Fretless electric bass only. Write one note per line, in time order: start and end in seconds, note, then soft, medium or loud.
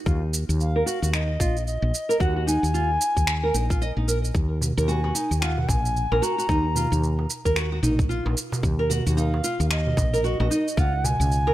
0.06 0.43 D#2 medium
0.49 0.82 D#2 medium
1.02 1.36 D#2 medium
1.40 1.77 A#1 medium
1.82 1.91 A#1 medium
2.20 2.57 D#2 medium
2.63 2.97 D#2 medium
3.17 3.50 D#2 medium
3.54 3.91 A#1 medium
3.97 4.30 A#1 medium
4.35 4.71 D#2 medium
4.78 5.11 D#2 medium
5.31 5.65 D#2 medium
5.68 6.05 A#1 medium
6.12 6.20 A#1 medium
6.49 6.86 D#2 loud
6.92 7.25 D#2 medium
7.45 7.79 D#2 medium
7.83 8.20 A#1 medium
8.26 8.34 A#1 medium
8.63 9.00 D#2 loud
9.07 9.40 D#2 medium
9.60 9.93 D#2 medium
9.97 10.34 A#1 medium
10.40 10.48 A#1 medium
10.78 11.14 C#2 loud
11.20 11.54 C#2 medium